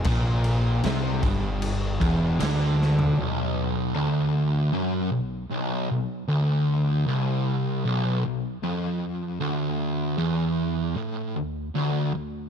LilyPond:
<<
  \new Staff \with { instrumentName = "Distorted electric guitar" } { \clef bass \time 4/4 \key b \minor \tempo 4 = 77 bes,4 c8 g,4 e,8 d4 | b,,4 d,4 fis,8 b,,8 b,,8 b,,8 | d,4 c,4 b,,8 b,,8 eis,4 | d,4 e,4 a,8 d,8 d,8 d,8 | }
  \new Staff \with { instrumentName = "Fingered electric bass" } { \clef bass \time 4/4 \key b \minor bes,,4 c,8 g,,4 e,,8 d,4 | r1 | r1 | r1 | }
  \new DrumStaff \with { instrumentName = "Drums" } \drummode { \time 4/4 <cymc bd>8 cymc8 <cymc sn>8 <cymc bd>8 cymc8 <cymc bd>8 <cymc sn>8 sn16 tomfh16 | r4 r4 r4 r4 | r4 r4 r4 r4 | r4 r4 r4 r4 | }
>>